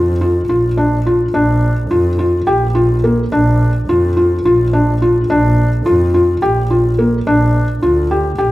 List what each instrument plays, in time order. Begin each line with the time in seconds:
Already playing: double bass F2, felt piano F4
0.21 felt piano F4
0.49 double bass A#1, felt piano F4
0.77 felt piano D4
1.06 felt piano F4
1.34 double bass A#1, felt piano D4
1.91 double bass F2, felt piano F4
2.19 felt piano F4
2.47 double bass A#1, felt piano G4
2.75 felt piano F4
3.04 felt piano A#3
3.32 double bass A#1, felt piano D4
3.89 double bass F2, felt piano F4
4.17 felt piano F4
4.45 double bass A#1, felt piano F4
4.73 felt piano D4
5.02 felt piano F4
5.30 double bass A#1, felt piano D4
5.86 double bass F2, felt piano F4
6.14 felt piano F4
6.42 double bass A#1, felt piano G4
6.70 felt piano F4
6.99 felt piano A#3
7.27 double bass A#1, felt piano D4
7.82 double bass D2, felt piano F4
8.11 felt piano G4
8.38 double bass A#1, felt piano G4